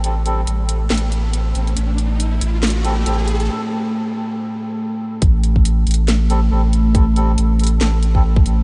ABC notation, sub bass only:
X:1
M:4/4
L:1/8
Q:"Swing 16ths" 1/4=139
K:Am
V:1 name="Sub bass" clef=bass
A,,,2 A,,,2 A,,,3 A,,, | A,,,3 A,,,3 A,,,2 | z8 | A,,,3 A,,,3 A,,,2- |
A,,,2 A,,,2 A,,,3 A,,, |]